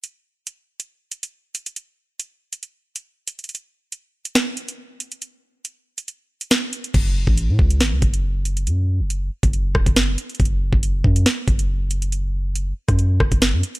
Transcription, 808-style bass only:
\new Staff \with { instrumentName = "808-style bass" } { \clef bass \time 4/4 \key fis \minor \tempo 4 = 139 r1 | r1 | r1 | r1 |
fis,,8. a,,8 a,16 cis,8 gis,,16 cis,16 fis,,4. | fis,8. fis,,8. r16 fis,,8. e,,16 fis,,8. r8 | fis,,8. fis,,8. fis,8 r8 fis,,4.~ | fis,,4. r16 fis,8. fis,,16 fis,,8 fis,16 r8 | }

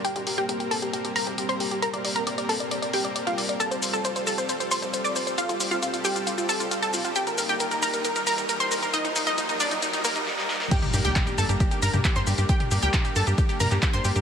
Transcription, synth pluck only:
\new Staff \with { instrumentName = "Synth pluck" } { \time 4/4 \key g \minor \tempo 4 = 135 <g' g''>16 g'16 g'16 <g' g''>16 g'16 g'16 <a' a''>16 g'16 g'16 g'16 <bes' bes''>16 g'16 g'16 <c'' c'''>16 g'16 g'16 | <bes' bes''>16 d''16 d''16 <bes' bes''>16 d''16 d''16 <a' a''>16 d''16 d''16 d''16 <g' g''>16 d''16 d''16 <f' f''>16 d''16 d''16 | <a' a''>16 c''16 c''16 <a' a''>16 c''16 c''16 <a' a''>16 c''16 c''16 c''16 <c'' c'''>16 c''16 c''16 <d'' d'''>16 c''16 c''16 | <f' f''>16 f'16 f'16 <f' f''>16 f'16 f'16 <g' g''>16 f'16 f'16 f'16 <a' a''>16 f'16 f'16 <a' a''>16 f'16 f'16 |
<g' g''>16 bes'16 bes'16 <g' g''>16 bes'16 bes'16 <bes' bes''>16 bes'16 bes'16 bes'16 <bes' bes''>16 bes'16 bes'16 <c'' c'''>16 bes'16 bes'16 | <ees' ees''>16 ees'16 ees'16 <ees' ees''>16 ees'16 ees'16 <d' d''>16 ees'16 ees'16 ees'16 <bes bes'>16 ees'16 r4 | <g' g''>16 g'16 g'16 <g' g''>16 g'16 g'16 <a' a''>16 g'16 g'16 g'16 <bes' bes''>16 g'16 g'16 <c'' c'''>16 g'16 g'16 | <g' g''>16 g'16 g'16 <g' g''>16 r16 g'16 <a' a''>16 g'16 g'16 g'16 <bes' bes''>16 g'16 g'16 <c'' c'''>16 g'16 g'16 | }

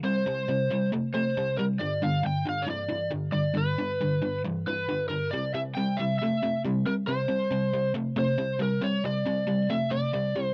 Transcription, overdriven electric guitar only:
\new Staff \with { instrumentName = "Overdriven electric guitar" } { \clef bass \time 4/4 \key c \lydian \tempo 4 = 136 <c g>8 <c g>8 <c g>8 <c g>8 <c a>8 <c a>8 <c g>8 <c g>8 | <g, d>8 <g, d>8 <g, d>8 <g, d>8 <g, e>8 <g, e>8 <g, d>8 <g, d>8 | <g, d>8 <g, d>8 <g, d>8 <g, d>8 <g, e>8 <g, e>8 <g, d>8 <g, d>8 | <c g>8 <c g>8 <c g>8 <c g>8 <c a>8 <c a>8 <c g>8 <c g>8 |
<c g>8 <c g>8 <c g>8 <c g>8 <c a>8 <c a>8 <c g>8 <c g>8 | <c g>8 <c g>8 <c g>8 <c g>8 <c a>8 <c a>8 <c g>8 <c g>8 | }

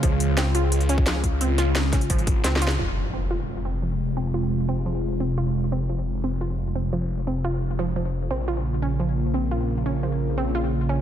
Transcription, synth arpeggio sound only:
\new Staff \with { instrumentName = "Synth arpeggio sound" } { \time 4/4 \key f \minor \tempo 4 = 174 f8 r8 c'8 f'8 r8 des'8 f8 r8 | c'8 f'8 r8 des'8 f8 r8 c'8 f'8 | f8 r8 c'8 f'8 r8 c'8 f8 r8 | c'8 f'8 r8 c'8 f8 r8 c'8 f'8 |
r8 c'8 f8 r8 c'8 f'8 r8 c'8 | f8 r8 c'8 f'8 r8 f8 f8 r8 | c'8 f'8 r8 des'8 f8 r8 c'8 f'8 | r8 des'8 f8 r8 c'8 f'8 r8 des'8 | }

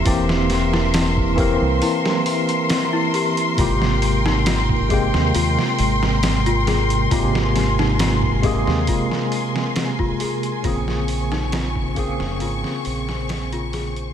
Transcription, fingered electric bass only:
\new Staff \with { instrumentName = "Fingered electric bass" } { \clef bass \time 4/4 \key aes \major \tempo 4 = 68 e,,4.~ e,,16 c,16 r2 | aes,,4.~ aes,,16 ees,16 ees,16 r16 aes,,4. | aes,,4.~ aes,,16 ees,16 r2 | bes,,4.~ bes,,16 f,,16 aes,,16 r16 bes,,4. | }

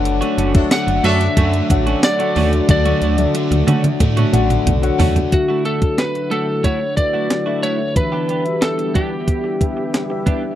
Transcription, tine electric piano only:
<<
  \new Staff \with { instrumentName = "Tine electric piano" } { \time 4/4 \key d \major \tempo 4 = 91 <d' fis' a' cis'' fis''>8 r16 <d' fis' a' cis'' e''>4 r8. <d' fis' a' cis'' fis''>8 r16 <d' fis' a' d'' fis''>8 r16 | <d' fis' a' d'' fis''>8 r16 <d' fis' a' d'' e''>4 r8. <d' fis' a' d'' fis''>8 r16 <d' fis' a' cis'' fis''>8 r16 | <d' fis' a' e''>8 r16 <d' fis' a' cis''>4 r8. <d' fis' a' b'>8 r16 <d' fis' a' e''>8 r16 | <d' g' b' e''>8 r16 <d' fis' g' b' e''>4 r8. <d' g' b' e''>8 r16 <d' g' b' e''>8 r16 | }
  \new Staff \with { instrumentName = "Tine electric piano" } { \clef bass \time 4/4 \key d \major r1 | d4. r2 r8 | d4. r2 r8 | e4. r2 r8 | }
>>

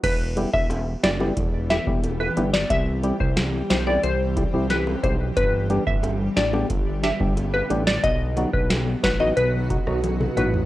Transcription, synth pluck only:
\new Staff \with { instrumentName = "Synth pluck" } { \time 4/4 \key e \minor \tempo 4 = 90 b'8 r16 e''8 r16 d''8 r8 e''16 r8 b'16 r16 d''16 | e''16 r8 c''16 r8 c''16 d''16 c''8. r16 b'16 r16 c''16 r16 | b'8 r16 e''8 r16 d''8 r8 e''16 r8 b'16 r16 d''16 | dis''16 r8 b'16 r8 b'16 dis''16 b'8. r8. b'16 r16 | }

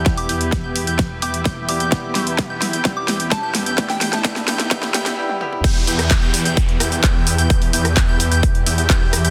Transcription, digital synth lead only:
\new Staff \with { instrumentName = "Digital synth lead" } { \time 4/4 \key e \minor \tempo 4 = 129 r8 g'''8. g'''8 g'''16 r8 g'''8 g'''8. g'''16 | r8 g'''8. g'''8 g'''16 g'''16 r16 g'''8. g'''8 g'''16 | r8 g'''8 g'''16 r16 g'''8 g'''16 r16 g'''16 r4 r16 | g'''16 r16 g'''8. g'''8 g'''16 r8 g'''8 g'''8. g'''16 |
g'''16 r16 g'''8. g'''8 g'''16 r8 g'''8 g'''8. g'''16 | }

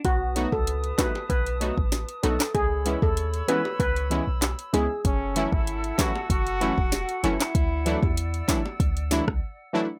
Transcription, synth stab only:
\new Staff \with { instrumentName = "Synth stab" } { \time 4/4 \key cis \minor \tempo 4 = 96 r8 <fis a b dis' fis'>8 r8 <fis a b dis' fis'>8 r8 <fis a b dis' fis'>8 r8 <fis a b dis' fis'>8 | r8 <e gis b cis' e'>8 r8 <e gis b cis' e'>8 r8 <e gis b cis' e'>8 r8 <e gis b cis' e'>8 | r8 <e fis a cis' e'>8 r8 <e fis a cis' e'>8 r8 <e fis a cis' e'>8 r8 <e fis a cis' e'>8 | r8 <e fis a d' e'>8 r8 <e fis a d' e'>8 r8 <e fis a d' e'>8 r8 <e fis a d' e'>8 | }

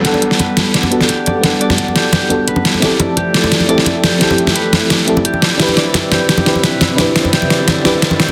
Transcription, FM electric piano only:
\new Staff \with { instrumentName = "FM electric piano" } { \time 4/4 \key g \major \tempo 4 = 173 <b d' a' fis''>2~ <b d' a' fis''>8 <b d' fis' a'>8 r4 | <b d' a' fis''>2~ <b d' a' fis''>8 <b d' fis' a'>8 r4 | <c' e' g' a'>2~ <c' e' g' a'>8 <c' e' g' a'>8 r4 | <c' e' g' a'>2~ <c' e' g' a'>8 <c' e' g' a'>8 r4 |
<d' e' g' b'>2~ <d' e' g' b'>8 <d' e' g' b'>8 r4 | <d' e' g' b'>2~ <d' e' g' b'>8 <d' e' g' b'>8 r4 | }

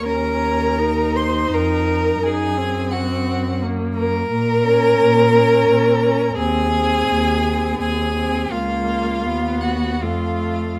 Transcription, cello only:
\new Staff \with { instrumentName = "Cello" } { \clef bass \time 3/4 \key ees \dorian \tempo 4 = 84 ees,2 f,4 | ges,2. | bes,4 bes,4 bes,4 | ees,4 ees,4 ees,4 |
des,4 dis,4 f,4 | }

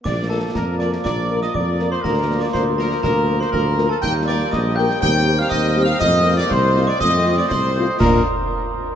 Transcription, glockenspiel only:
\new Staff \with { instrumentName = "Glockenspiel" } { \time 2/4 \key bes \major \tempo 4 = 121 d'''8 a''8 bes''8 d'''8 | d'''8. ees'''16 d'''8. c'''16 | bes''8. d'''16 c'''8 bes''8 | bes''8. c'''16 bes''8. a''16 |
g'''8 d'''8 ees'''8 g'''8 | g'''8. f'''16 \tuplet 3/2 { ees'''4 f'''8 } | ees'''8. d'''16 c'''8. d'''16 | ees'''8. d'''16 c'''4 |
bes''8 r4. | }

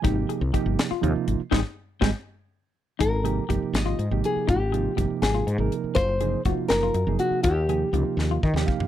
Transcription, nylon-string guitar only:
\new Staff \with { instrumentName = "Nylon-string guitar" } { \time 6/8 \key aes \major \tempo 4. = 81 r2. | r2. | bes'4. ees''4 aes'8 | g'4 r8 aes'4 r8 |
c''4 r8 bes'4 ges'8 | g'2 r4 | }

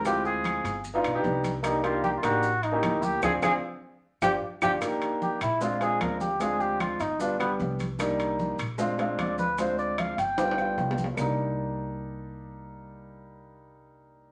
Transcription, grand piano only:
\new Staff \with { instrumentName = "Grand piano" } { \time 4/4 \key c \minor \tempo 4 = 151 <aes c' e' f'>4. r8. <b d' ees' f'>16 r16 <b d' ees' g'>8. r8 | <bes d' ees' g'>16 r16 <bes d' ees' g'>8. r16 <bes d' ees' g'>8 r8. <bes cis' e' g'>4~ <bes cis' e' g'>16 | <c' d' f'>8 <c' d' f'>8 r4. <d' f' g'>8 r8 <d' f' g'>8 | <bes d' ees' g'>4. r8 <aes c' d' f'>16 r16 <aes c' d' f'>4 r8 |
<aes c' d' f'>4. r8 <g b d' f'>16 r16 <g b d' g'>4 r8 | <g bes d' ees'>4. r8 <aes c' d' f'>16 r16 <aes c' d' f'>4 r8 | <aes c' d' f'>4. r8 <g b d' f'>16 r16 <g b d' f'>4 r8 | <g bes d' ees'>1~ |
<g bes d' ees'>1 | }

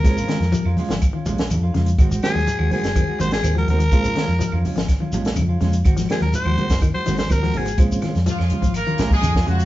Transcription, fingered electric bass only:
\new Staff \with { instrumentName = "Fingered electric bass" } { \clef bass \time 4/4 \key bes \minor \tempo 4 = 124 bes,,8 r16 f,16 r16 f,16 r16 aes,,8 r16 bes,,8 f,8 f,8 | aes,,8 r16 ees,16 r16 ees,16 r16 ges,,8 r16 aes,,8 ees,8 ees,8 | bes,,8 r16 f,16 r16 f,16 r16 aes,,8 r16 bes,,8 f,8 f,8 | aes,,8 r16 ees,16 r16 ees,16 r16 ges,,8 r16 aes,,8 ees,8 aes,,8 |
bes,,8 r16 f,16 r16 f,16 r16 aes,,8 r16 bes,,8 f,8 f,8 | }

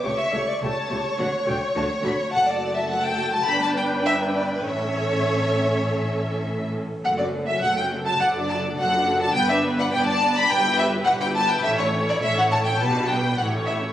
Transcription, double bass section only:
\new Staff \with { instrumentName = "Double bass section" } { \clef bass \time 4/4 \key a \mixolydian \tempo 4 = 104 cis,8 cis,8 cis,8 cis,8 d,8 d,8 d,8 d,8 | fis,,2 g,,2 | a,,2.~ a,,8 r8 | fis,,4 fis,,4 fis,,4 fis,,4 |
g,,4 g,,4 g,,4 g,,4 | a,,4 a,,4 b,,4 a,,4 | }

